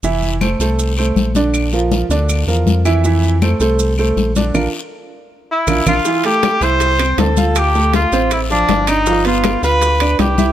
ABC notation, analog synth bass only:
X:1
M:4/4
L:1/8
Q:1/4=159
K:F
V:1 name="Analog synth bass" clef=bass
F,,,3 C,,3 B,,,2- | B,,,3 D,,2 E,, F,,2- | F,,3 C,,3 B,,,2 | B,,, z4 z B,,, B,,, |
z3 C,,3 D,,2- | D,,3 A,,,3 G,,,2- | G,,,3 D,,3 C,,2 |]